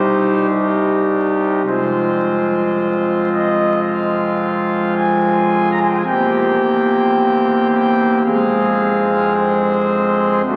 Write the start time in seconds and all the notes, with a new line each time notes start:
Already playing: C2 C3 G3 D#4 G4 C5
0.50 G4
1.66 F1 F2 G#3 C4 F4 C5
3.34 D#5
3.89 F5
4.98 G#5
5.72 A#5
5.80 G#5
5.89 G5
5.98 G#5
6.07 E1 E2 A#3 C4 G4 G5
7.72 G5
8.26 F1 F2 G#3 C4 G#4 F5
9.36 C5
10.45 D1 D2 A3 C4 D4 F#4